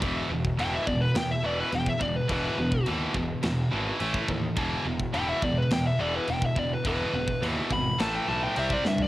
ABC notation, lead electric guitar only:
X:1
M:4/4
L:1/16
Q:1/4=106
K:Em
V:1 name="Lead electric guitar"
z4 g e d B g e d B g e d B | B4 z12 | z4 g e d B g e d B g e d B | B4 z2 b2 a g a g e d e d |]